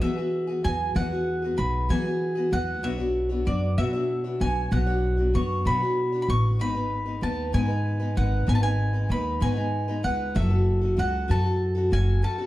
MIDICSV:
0, 0, Header, 1, 4, 480
1, 0, Start_track
1, 0, Key_signature, 4, "major"
1, 0, Tempo, 625652
1, 740, Time_signature, 6, 3, 24, 8
1, 9562, End_track
2, 0, Start_track
2, 0, Title_t, "Mandolin"
2, 0, Program_c, 0, 25
2, 12, Note_on_c, 0, 76, 71
2, 494, Note_on_c, 0, 80, 81
2, 511, Note_off_c, 0, 76, 0
2, 734, Note_off_c, 0, 80, 0
2, 737, Note_on_c, 0, 78, 76
2, 1189, Note_off_c, 0, 78, 0
2, 1209, Note_on_c, 0, 83, 72
2, 1457, Note_off_c, 0, 83, 0
2, 1460, Note_on_c, 0, 80, 70
2, 1936, Note_off_c, 0, 80, 0
2, 1939, Note_on_c, 0, 78, 83
2, 2178, Note_on_c, 0, 76, 76
2, 2188, Note_off_c, 0, 78, 0
2, 2658, Note_off_c, 0, 76, 0
2, 2661, Note_on_c, 0, 74, 66
2, 2896, Note_off_c, 0, 74, 0
2, 2899, Note_on_c, 0, 76, 74
2, 3385, Note_on_c, 0, 80, 82
2, 3396, Note_off_c, 0, 76, 0
2, 3620, Note_off_c, 0, 80, 0
2, 3623, Note_on_c, 0, 78, 71
2, 4073, Note_off_c, 0, 78, 0
2, 4104, Note_on_c, 0, 85, 73
2, 4327, Note_off_c, 0, 85, 0
2, 4348, Note_on_c, 0, 83, 79
2, 4764, Note_off_c, 0, 83, 0
2, 4774, Note_on_c, 0, 83, 53
2, 4825, Note_off_c, 0, 83, 0
2, 4830, Note_on_c, 0, 85, 77
2, 5050, Note_off_c, 0, 85, 0
2, 5072, Note_on_c, 0, 83, 78
2, 5545, Note_off_c, 0, 83, 0
2, 5548, Note_on_c, 0, 81, 75
2, 5782, Note_off_c, 0, 81, 0
2, 5785, Note_on_c, 0, 80, 78
2, 6266, Note_off_c, 0, 80, 0
2, 6269, Note_on_c, 0, 78, 75
2, 6511, Note_off_c, 0, 78, 0
2, 6514, Note_on_c, 0, 80, 82
2, 6557, Note_off_c, 0, 80, 0
2, 6560, Note_on_c, 0, 81, 64
2, 6612, Note_off_c, 0, 81, 0
2, 6620, Note_on_c, 0, 80, 78
2, 6990, Note_off_c, 0, 80, 0
2, 6994, Note_on_c, 0, 83, 75
2, 7225, Note_off_c, 0, 83, 0
2, 7228, Note_on_c, 0, 80, 77
2, 7700, Note_off_c, 0, 80, 0
2, 7703, Note_on_c, 0, 78, 72
2, 7945, Note_on_c, 0, 76, 73
2, 7950, Note_off_c, 0, 78, 0
2, 8393, Note_off_c, 0, 76, 0
2, 8432, Note_on_c, 0, 78, 73
2, 8674, Note_off_c, 0, 78, 0
2, 8677, Note_on_c, 0, 81, 72
2, 9150, Note_off_c, 0, 81, 0
2, 9153, Note_on_c, 0, 80, 77
2, 9388, Note_off_c, 0, 80, 0
2, 9391, Note_on_c, 0, 81, 66
2, 9562, Note_off_c, 0, 81, 0
2, 9562, End_track
3, 0, Start_track
3, 0, Title_t, "Steel-string acoustic guitar"
3, 0, Program_c, 1, 25
3, 14, Note_on_c, 1, 52, 62
3, 16, Note_on_c, 1, 54, 60
3, 20, Note_on_c, 1, 59, 59
3, 26, Note_on_c, 1, 66, 70
3, 29, Note_on_c, 1, 68, 72
3, 117, Note_off_c, 1, 68, 0
3, 127, Note_on_c, 1, 68, 40
3, 131, Note_off_c, 1, 66, 0
3, 137, Note_off_c, 1, 52, 0
3, 138, Note_off_c, 1, 54, 0
3, 140, Note_off_c, 1, 59, 0
3, 140, Note_on_c, 1, 66, 37
3, 152, Note_on_c, 1, 59, 34
3, 354, Note_off_c, 1, 68, 0
3, 363, Note_on_c, 1, 68, 39
3, 367, Note_off_c, 1, 66, 0
3, 377, Note_off_c, 1, 59, 0
3, 377, Note_on_c, 1, 66, 35
3, 386, Note_on_c, 1, 59, 31
3, 492, Note_off_c, 1, 68, 0
3, 495, Note_off_c, 1, 59, 0
3, 495, Note_on_c, 1, 54, 41
3, 498, Note_off_c, 1, 66, 0
3, 504, Note_on_c, 1, 59, 47
3, 513, Note_on_c, 1, 66, 51
3, 518, Note_on_c, 1, 68, 53
3, 727, Note_off_c, 1, 54, 0
3, 727, Note_on_c, 1, 52, 62
3, 731, Note_off_c, 1, 59, 0
3, 732, Note_off_c, 1, 66, 0
3, 736, Note_off_c, 1, 68, 0
3, 736, Note_on_c, 1, 54, 54
3, 740, Note_on_c, 1, 59, 61
3, 741, Note_on_c, 1, 66, 53
3, 745, Note_on_c, 1, 68, 65
3, 841, Note_off_c, 1, 68, 0
3, 850, Note_on_c, 1, 68, 42
3, 852, Note_off_c, 1, 66, 0
3, 854, Note_off_c, 1, 52, 0
3, 858, Note_off_c, 1, 54, 0
3, 860, Note_off_c, 1, 59, 0
3, 861, Note_on_c, 1, 66, 39
3, 874, Note_on_c, 1, 59, 38
3, 1081, Note_off_c, 1, 68, 0
3, 1090, Note_on_c, 1, 68, 39
3, 1097, Note_off_c, 1, 66, 0
3, 1106, Note_on_c, 1, 66, 34
3, 1108, Note_off_c, 1, 59, 0
3, 1117, Note_on_c, 1, 59, 35
3, 1202, Note_on_c, 1, 54, 51
3, 1205, Note_off_c, 1, 59, 0
3, 1211, Note_off_c, 1, 66, 0
3, 1214, Note_on_c, 1, 59, 51
3, 1215, Note_off_c, 1, 68, 0
3, 1220, Note_on_c, 1, 66, 55
3, 1225, Note_on_c, 1, 68, 62
3, 1445, Note_off_c, 1, 54, 0
3, 1450, Note_on_c, 1, 52, 68
3, 1451, Note_off_c, 1, 59, 0
3, 1454, Note_on_c, 1, 54, 76
3, 1456, Note_off_c, 1, 66, 0
3, 1459, Note_off_c, 1, 68, 0
3, 1460, Note_on_c, 1, 59, 67
3, 1465, Note_on_c, 1, 66, 74
3, 1468, Note_on_c, 1, 68, 71
3, 1553, Note_off_c, 1, 68, 0
3, 1562, Note_on_c, 1, 68, 47
3, 1567, Note_off_c, 1, 66, 0
3, 1576, Note_off_c, 1, 52, 0
3, 1576, Note_off_c, 1, 59, 0
3, 1577, Note_on_c, 1, 66, 40
3, 1578, Note_off_c, 1, 54, 0
3, 1585, Note_on_c, 1, 59, 39
3, 1795, Note_off_c, 1, 68, 0
3, 1804, Note_on_c, 1, 68, 48
3, 1809, Note_off_c, 1, 66, 0
3, 1818, Note_off_c, 1, 59, 0
3, 1818, Note_on_c, 1, 66, 41
3, 1828, Note_on_c, 1, 59, 37
3, 1923, Note_off_c, 1, 59, 0
3, 1924, Note_on_c, 1, 54, 47
3, 1931, Note_off_c, 1, 66, 0
3, 1932, Note_on_c, 1, 59, 44
3, 1933, Note_off_c, 1, 68, 0
3, 1940, Note_on_c, 1, 66, 51
3, 1948, Note_on_c, 1, 68, 55
3, 2163, Note_off_c, 1, 54, 0
3, 2169, Note_off_c, 1, 59, 0
3, 2171, Note_on_c, 1, 47, 57
3, 2172, Note_on_c, 1, 54, 64
3, 2175, Note_off_c, 1, 66, 0
3, 2178, Note_on_c, 1, 59, 61
3, 2180, Note_on_c, 1, 62, 59
3, 2182, Note_off_c, 1, 68, 0
3, 2184, Note_on_c, 1, 66, 68
3, 2185, Note_on_c, 1, 73, 65
3, 2277, Note_off_c, 1, 73, 0
3, 2286, Note_on_c, 1, 73, 44
3, 2287, Note_off_c, 1, 66, 0
3, 2294, Note_off_c, 1, 62, 0
3, 2296, Note_off_c, 1, 47, 0
3, 2296, Note_on_c, 1, 66, 42
3, 2297, Note_off_c, 1, 54, 0
3, 2300, Note_off_c, 1, 59, 0
3, 2304, Note_on_c, 1, 62, 39
3, 2310, Note_on_c, 1, 59, 35
3, 2517, Note_off_c, 1, 73, 0
3, 2525, Note_off_c, 1, 66, 0
3, 2526, Note_on_c, 1, 73, 38
3, 2534, Note_off_c, 1, 62, 0
3, 2535, Note_on_c, 1, 66, 42
3, 2541, Note_off_c, 1, 59, 0
3, 2543, Note_on_c, 1, 62, 33
3, 2550, Note_on_c, 1, 59, 36
3, 2638, Note_off_c, 1, 59, 0
3, 2647, Note_off_c, 1, 62, 0
3, 2647, Note_on_c, 1, 59, 47
3, 2653, Note_off_c, 1, 66, 0
3, 2654, Note_off_c, 1, 73, 0
3, 2656, Note_on_c, 1, 62, 55
3, 2662, Note_on_c, 1, 66, 57
3, 2895, Note_off_c, 1, 59, 0
3, 2897, Note_on_c, 1, 47, 64
3, 2899, Note_off_c, 1, 62, 0
3, 2902, Note_off_c, 1, 66, 0
3, 2904, Note_on_c, 1, 59, 63
3, 2905, Note_on_c, 1, 54, 70
3, 2911, Note_on_c, 1, 62, 76
3, 2913, Note_on_c, 1, 66, 61
3, 2916, Note_on_c, 1, 73, 71
3, 3005, Note_off_c, 1, 73, 0
3, 3013, Note_off_c, 1, 66, 0
3, 3014, Note_on_c, 1, 73, 43
3, 3020, Note_off_c, 1, 47, 0
3, 3022, Note_off_c, 1, 62, 0
3, 3022, Note_on_c, 1, 66, 35
3, 3023, Note_off_c, 1, 59, 0
3, 3024, Note_off_c, 1, 54, 0
3, 3031, Note_on_c, 1, 62, 38
3, 3037, Note_on_c, 1, 59, 34
3, 3245, Note_off_c, 1, 73, 0
3, 3254, Note_off_c, 1, 66, 0
3, 3254, Note_on_c, 1, 73, 42
3, 3263, Note_off_c, 1, 62, 0
3, 3264, Note_on_c, 1, 66, 44
3, 3267, Note_off_c, 1, 59, 0
3, 3272, Note_on_c, 1, 62, 38
3, 3277, Note_on_c, 1, 59, 37
3, 3365, Note_off_c, 1, 59, 0
3, 3374, Note_on_c, 1, 59, 47
3, 3376, Note_off_c, 1, 62, 0
3, 3378, Note_off_c, 1, 73, 0
3, 3383, Note_off_c, 1, 66, 0
3, 3385, Note_on_c, 1, 62, 45
3, 3392, Note_on_c, 1, 66, 45
3, 3401, Note_on_c, 1, 73, 51
3, 3610, Note_off_c, 1, 59, 0
3, 3612, Note_on_c, 1, 47, 56
3, 3617, Note_off_c, 1, 62, 0
3, 3617, Note_on_c, 1, 54, 55
3, 3618, Note_off_c, 1, 66, 0
3, 3618, Note_off_c, 1, 73, 0
3, 3619, Note_on_c, 1, 59, 58
3, 3626, Note_on_c, 1, 62, 56
3, 3627, Note_on_c, 1, 66, 64
3, 3627, Note_on_c, 1, 73, 58
3, 3723, Note_off_c, 1, 73, 0
3, 3730, Note_off_c, 1, 66, 0
3, 3733, Note_on_c, 1, 73, 42
3, 3738, Note_off_c, 1, 47, 0
3, 3739, Note_off_c, 1, 62, 0
3, 3740, Note_off_c, 1, 54, 0
3, 3740, Note_on_c, 1, 66, 40
3, 3741, Note_off_c, 1, 59, 0
3, 3748, Note_on_c, 1, 62, 36
3, 3758, Note_on_c, 1, 59, 33
3, 3957, Note_off_c, 1, 73, 0
3, 3966, Note_on_c, 1, 73, 35
3, 3968, Note_off_c, 1, 66, 0
3, 3974, Note_off_c, 1, 62, 0
3, 3978, Note_on_c, 1, 66, 38
3, 3981, Note_off_c, 1, 59, 0
3, 3984, Note_on_c, 1, 62, 37
3, 3990, Note_on_c, 1, 59, 31
3, 4085, Note_off_c, 1, 59, 0
3, 4092, Note_off_c, 1, 62, 0
3, 4094, Note_off_c, 1, 73, 0
3, 4094, Note_on_c, 1, 59, 52
3, 4100, Note_off_c, 1, 66, 0
3, 4101, Note_on_c, 1, 62, 57
3, 4108, Note_on_c, 1, 66, 54
3, 4116, Note_on_c, 1, 73, 57
3, 4336, Note_on_c, 1, 47, 66
3, 4338, Note_off_c, 1, 59, 0
3, 4340, Note_off_c, 1, 66, 0
3, 4342, Note_off_c, 1, 62, 0
3, 4343, Note_on_c, 1, 54, 59
3, 4347, Note_off_c, 1, 73, 0
3, 4347, Note_on_c, 1, 59, 57
3, 4349, Note_on_c, 1, 66, 70
3, 4350, Note_on_c, 1, 62, 68
3, 4356, Note_on_c, 1, 73, 71
3, 4454, Note_off_c, 1, 73, 0
3, 4459, Note_off_c, 1, 47, 0
3, 4460, Note_off_c, 1, 66, 0
3, 4463, Note_off_c, 1, 54, 0
3, 4463, Note_on_c, 1, 73, 46
3, 4465, Note_off_c, 1, 59, 0
3, 4466, Note_off_c, 1, 62, 0
3, 4469, Note_on_c, 1, 66, 41
3, 4481, Note_on_c, 1, 62, 34
3, 4485, Note_on_c, 1, 59, 33
3, 4688, Note_off_c, 1, 73, 0
3, 4697, Note_on_c, 1, 73, 46
3, 4700, Note_off_c, 1, 66, 0
3, 4705, Note_off_c, 1, 62, 0
3, 4709, Note_on_c, 1, 66, 43
3, 4714, Note_off_c, 1, 59, 0
3, 4714, Note_on_c, 1, 62, 35
3, 4724, Note_on_c, 1, 59, 38
3, 4811, Note_off_c, 1, 59, 0
3, 4817, Note_off_c, 1, 62, 0
3, 4820, Note_off_c, 1, 73, 0
3, 4820, Note_on_c, 1, 59, 40
3, 4826, Note_off_c, 1, 66, 0
3, 4827, Note_on_c, 1, 62, 47
3, 4836, Note_on_c, 1, 66, 44
3, 4842, Note_on_c, 1, 73, 54
3, 5056, Note_on_c, 1, 44, 57
3, 5060, Note_on_c, 1, 51, 57
3, 5061, Note_off_c, 1, 59, 0
3, 5065, Note_off_c, 1, 62, 0
3, 5065, Note_on_c, 1, 56, 61
3, 5069, Note_off_c, 1, 66, 0
3, 5070, Note_off_c, 1, 73, 0
3, 5070, Note_on_c, 1, 59, 56
3, 5072, Note_on_c, 1, 63, 64
3, 5074, Note_on_c, 1, 71, 63
3, 5164, Note_off_c, 1, 71, 0
3, 5173, Note_off_c, 1, 63, 0
3, 5174, Note_on_c, 1, 71, 42
3, 5180, Note_off_c, 1, 44, 0
3, 5182, Note_off_c, 1, 51, 0
3, 5182, Note_on_c, 1, 63, 38
3, 5183, Note_off_c, 1, 59, 0
3, 5184, Note_off_c, 1, 56, 0
3, 5192, Note_on_c, 1, 59, 38
3, 5197, Note_on_c, 1, 56, 34
3, 5405, Note_off_c, 1, 71, 0
3, 5414, Note_on_c, 1, 71, 44
3, 5415, Note_off_c, 1, 63, 0
3, 5421, Note_off_c, 1, 59, 0
3, 5424, Note_on_c, 1, 63, 38
3, 5429, Note_off_c, 1, 56, 0
3, 5430, Note_on_c, 1, 59, 32
3, 5438, Note_on_c, 1, 56, 31
3, 5524, Note_off_c, 1, 56, 0
3, 5533, Note_on_c, 1, 56, 52
3, 5534, Note_off_c, 1, 59, 0
3, 5539, Note_off_c, 1, 71, 0
3, 5541, Note_off_c, 1, 63, 0
3, 5544, Note_on_c, 1, 59, 53
3, 5551, Note_on_c, 1, 63, 51
3, 5560, Note_on_c, 1, 71, 54
3, 5773, Note_off_c, 1, 56, 0
3, 5774, Note_on_c, 1, 44, 58
3, 5776, Note_off_c, 1, 59, 0
3, 5777, Note_on_c, 1, 51, 64
3, 5779, Note_off_c, 1, 63, 0
3, 5783, Note_off_c, 1, 71, 0
3, 5783, Note_on_c, 1, 56, 68
3, 5785, Note_on_c, 1, 59, 67
3, 5789, Note_on_c, 1, 63, 60
3, 5792, Note_on_c, 1, 71, 66
3, 5881, Note_off_c, 1, 71, 0
3, 5890, Note_off_c, 1, 63, 0
3, 5891, Note_on_c, 1, 71, 47
3, 5897, Note_off_c, 1, 59, 0
3, 5899, Note_off_c, 1, 44, 0
3, 5900, Note_off_c, 1, 51, 0
3, 5900, Note_on_c, 1, 63, 41
3, 5903, Note_off_c, 1, 56, 0
3, 5907, Note_on_c, 1, 59, 37
3, 5914, Note_on_c, 1, 56, 35
3, 6125, Note_off_c, 1, 71, 0
3, 6134, Note_off_c, 1, 63, 0
3, 6134, Note_on_c, 1, 71, 47
3, 6141, Note_off_c, 1, 59, 0
3, 6143, Note_on_c, 1, 63, 41
3, 6149, Note_off_c, 1, 56, 0
3, 6150, Note_on_c, 1, 59, 37
3, 6157, Note_on_c, 1, 56, 39
3, 6246, Note_off_c, 1, 56, 0
3, 6255, Note_on_c, 1, 56, 45
3, 6256, Note_off_c, 1, 59, 0
3, 6259, Note_off_c, 1, 71, 0
3, 6263, Note_off_c, 1, 63, 0
3, 6265, Note_on_c, 1, 59, 43
3, 6274, Note_on_c, 1, 63, 47
3, 6279, Note_on_c, 1, 71, 50
3, 6492, Note_off_c, 1, 56, 0
3, 6495, Note_off_c, 1, 59, 0
3, 6496, Note_on_c, 1, 44, 65
3, 6497, Note_off_c, 1, 63, 0
3, 6499, Note_on_c, 1, 51, 51
3, 6501, Note_on_c, 1, 56, 58
3, 6504, Note_off_c, 1, 71, 0
3, 6504, Note_on_c, 1, 59, 69
3, 6506, Note_on_c, 1, 63, 54
3, 6513, Note_on_c, 1, 71, 67
3, 6606, Note_off_c, 1, 71, 0
3, 6613, Note_off_c, 1, 63, 0
3, 6615, Note_on_c, 1, 71, 42
3, 6620, Note_off_c, 1, 44, 0
3, 6621, Note_off_c, 1, 51, 0
3, 6621, Note_off_c, 1, 59, 0
3, 6622, Note_on_c, 1, 63, 41
3, 6623, Note_off_c, 1, 56, 0
3, 6630, Note_on_c, 1, 59, 40
3, 6638, Note_on_c, 1, 56, 36
3, 6843, Note_off_c, 1, 71, 0
3, 6852, Note_off_c, 1, 63, 0
3, 6852, Note_on_c, 1, 71, 39
3, 6858, Note_off_c, 1, 59, 0
3, 6861, Note_on_c, 1, 63, 42
3, 6864, Note_off_c, 1, 56, 0
3, 6867, Note_on_c, 1, 59, 37
3, 6874, Note_on_c, 1, 56, 32
3, 6964, Note_off_c, 1, 56, 0
3, 6973, Note_off_c, 1, 59, 0
3, 6973, Note_on_c, 1, 56, 49
3, 6978, Note_off_c, 1, 71, 0
3, 6979, Note_off_c, 1, 63, 0
3, 6982, Note_on_c, 1, 59, 55
3, 6988, Note_on_c, 1, 63, 57
3, 6995, Note_on_c, 1, 71, 56
3, 7214, Note_off_c, 1, 56, 0
3, 7215, Note_on_c, 1, 44, 65
3, 7218, Note_off_c, 1, 59, 0
3, 7218, Note_on_c, 1, 51, 63
3, 7220, Note_off_c, 1, 63, 0
3, 7221, Note_off_c, 1, 71, 0
3, 7223, Note_on_c, 1, 56, 62
3, 7227, Note_on_c, 1, 59, 75
3, 7229, Note_on_c, 1, 63, 70
3, 7230, Note_on_c, 1, 71, 73
3, 7321, Note_off_c, 1, 71, 0
3, 7331, Note_off_c, 1, 63, 0
3, 7331, Note_on_c, 1, 71, 42
3, 7338, Note_off_c, 1, 59, 0
3, 7339, Note_off_c, 1, 44, 0
3, 7340, Note_on_c, 1, 63, 48
3, 7341, Note_off_c, 1, 51, 0
3, 7343, Note_off_c, 1, 56, 0
3, 7347, Note_on_c, 1, 59, 42
3, 7353, Note_on_c, 1, 56, 37
3, 7569, Note_off_c, 1, 71, 0
3, 7576, Note_off_c, 1, 63, 0
3, 7578, Note_on_c, 1, 71, 48
3, 7584, Note_off_c, 1, 59, 0
3, 7585, Note_on_c, 1, 63, 50
3, 7588, Note_off_c, 1, 56, 0
3, 7593, Note_on_c, 1, 59, 38
3, 7601, Note_on_c, 1, 56, 37
3, 7685, Note_off_c, 1, 56, 0
3, 7693, Note_off_c, 1, 59, 0
3, 7695, Note_on_c, 1, 56, 53
3, 7701, Note_off_c, 1, 63, 0
3, 7701, Note_off_c, 1, 71, 0
3, 7703, Note_on_c, 1, 59, 47
3, 7710, Note_on_c, 1, 63, 49
3, 7715, Note_on_c, 1, 71, 55
3, 7934, Note_off_c, 1, 56, 0
3, 7937, Note_off_c, 1, 59, 0
3, 7938, Note_on_c, 1, 54, 65
3, 7940, Note_on_c, 1, 61, 61
3, 7944, Note_off_c, 1, 63, 0
3, 7947, Note_on_c, 1, 66, 68
3, 7949, Note_off_c, 1, 71, 0
3, 7955, Note_on_c, 1, 69, 69
3, 8046, Note_off_c, 1, 69, 0
3, 8055, Note_on_c, 1, 69, 44
3, 8057, Note_off_c, 1, 66, 0
3, 8060, Note_off_c, 1, 54, 0
3, 8062, Note_off_c, 1, 61, 0
3, 8066, Note_on_c, 1, 66, 39
3, 8077, Note_on_c, 1, 61, 39
3, 8286, Note_off_c, 1, 69, 0
3, 8295, Note_on_c, 1, 69, 44
3, 8297, Note_off_c, 1, 66, 0
3, 8306, Note_on_c, 1, 66, 36
3, 8310, Note_off_c, 1, 61, 0
3, 8319, Note_on_c, 1, 61, 35
3, 8411, Note_off_c, 1, 61, 0
3, 8413, Note_on_c, 1, 54, 60
3, 8419, Note_off_c, 1, 69, 0
3, 8420, Note_off_c, 1, 66, 0
3, 8420, Note_on_c, 1, 61, 60
3, 8429, Note_on_c, 1, 66, 60
3, 8435, Note_on_c, 1, 69, 59
3, 8644, Note_off_c, 1, 54, 0
3, 8652, Note_off_c, 1, 61, 0
3, 8654, Note_on_c, 1, 54, 64
3, 8656, Note_off_c, 1, 66, 0
3, 8662, Note_off_c, 1, 69, 0
3, 8662, Note_on_c, 1, 61, 65
3, 8665, Note_on_c, 1, 66, 70
3, 8671, Note_on_c, 1, 69, 73
3, 8762, Note_off_c, 1, 69, 0
3, 8771, Note_on_c, 1, 69, 45
3, 8776, Note_off_c, 1, 66, 0
3, 8778, Note_off_c, 1, 54, 0
3, 8782, Note_off_c, 1, 61, 0
3, 8785, Note_on_c, 1, 66, 42
3, 8797, Note_on_c, 1, 61, 39
3, 9004, Note_off_c, 1, 69, 0
3, 9013, Note_on_c, 1, 69, 49
3, 9017, Note_off_c, 1, 66, 0
3, 9025, Note_off_c, 1, 61, 0
3, 9027, Note_on_c, 1, 66, 44
3, 9035, Note_on_c, 1, 61, 37
3, 9134, Note_off_c, 1, 61, 0
3, 9134, Note_on_c, 1, 54, 47
3, 9138, Note_off_c, 1, 69, 0
3, 9140, Note_off_c, 1, 66, 0
3, 9143, Note_on_c, 1, 61, 50
3, 9150, Note_on_c, 1, 66, 50
3, 9159, Note_on_c, 1, 69, 50
3, 9369, Note_off_c, 1, 54, 0
3, 9372, Note_off_c, 1, 61, 0
3, 9378, Note_on_c, 1, 54, 61
3, 9380, Note_off_c, 1, 66, 0
3, 9382, Note_on_c, 1, 61, 64
3, 9383, Note_off_c, 1, 69, 0
3, 9390, Note_on_c, 1, 66, 57
3, 9392, Note_on_c, 1, 69, 57
3, 9490, Note_off_c, 1, 69, 0
3, 9499, Note_on_c, 1, 69, 44
3, 9500, Note_off_c, 1, 54, 0
3, 9500, Note_off_c, 1, 66, 0
3, 9502, Note_off_c, 1, 61, 0
3, 9510, Note_on_c, 1, 66, 40
3, 9522, Note_on_c, 1, 61, 34
3, 9562, Note_off_c, 1, 61, 0
3, 9562, Note_off_c, 1, 66, 0
3, 9562, Note_off_c, 1, 69, 0
3, 9562, End_track
4, 0, Start_track
4, 0, Title_t, "Upright bass"
4, 0, Program_c, 2, 32
4, 16, Note_on_c, 2, 52, 67
4, 474, Note_off_c, 2, 52, 0
4, 496, Note_on_c, 2, 40, 66
4, 726, Note_off_c, 2, 40, 0
4, 734, Note_on_c, 2, 40, 84
4, 1193, Note_off_c, 2, 40, 0
4, 1217, Note_on_c, 2, 35, 74
4, 1447, Note_off_c, 2, 35, 0
4, 1456, Note_on_c, 2, 52, 73
4, 1915, Note_off_c, 2, 52, 0
4, 1936, Note_on_c, 2, 40, 74
4, 2176, Note_off_c, 2, 40, 0
4, 2176, Note_on_c, 2, 35, 82
4, 2635, Note_off_c, 2, 35, 0
4, 2661, Note_on_c, 2, 42, 70
4, 2890, Note_off_c, 2, 42, 0
4, 2899, Note_on_c, 2, 47, 67
4, 3357, Note_off_c, 2, 47, 0
4, 3382, Note_on_c, 2, 35, 71
4, 3610, Note_off_c, 2, 35, 0
4, 3618, Note_on_c, 2, 35, 83
4, 4077, Note_off_c, 2, 35, 0
4, 4105, Note_on_c, 2, 42, 70
4, 4332, Note_off_c, 2, 42, 0
4, 4340, Note_on_c, 2, 47, 66
4, 4798, Note_off_c, 2, 47, 0
4, 4822, Note_on_c, 2, 33, 65
4, 5060, Note_off_c, 2, 33, 0
4, 5060, Note_on_c, 2, 32, 86
4, 5518, Note_off_c, 2, 32, 0
4, 5542, Note_on_c, 2, 39, 70
4, 5771, Note_off_c, 2, 39, 0
4, 5785, Note_on_c, 2, 44, 73
4, 6240, Note_off_c, 2, 44, 0
4, 6268, Note_on_c, 2, 32, 72
4, 6494, Note_off_c, 2, 32, 0
4, 6505, Note_on_c, 2, 32, 80
4, 6960, Note_off_c, 2, 32, 0
4, 6981, Note_on_c, 2, 39, 74
4, 7210, Note_off_c, 2, 39, 0
4, 7223, Note_on_c, 2, 44, 71
4, 7679, Note_off_c, 2, 44, 0
4, 7706, Note_on_c, 2, 37, 72
4, 7946, Note_on_c, 2, 30, 92
4, 7957, Note_off_c, 2, 37, 0
4, 8400, Note_off_c, 2, 30, 0
4, 8427, Note_on_c, 2, 37, 78
4, 8653, Note_off_c, 2, 37, 0
4, 8667, Note_on_c, 2, 42, 66
4, 9120, Note_off_c, 2, 42, 0
4, 9146, Note_on_c, 2, 30, 71
4, 9372, Note_off_c, 2, 30, 0
4, 9562, End_track
0, 0, End_of_file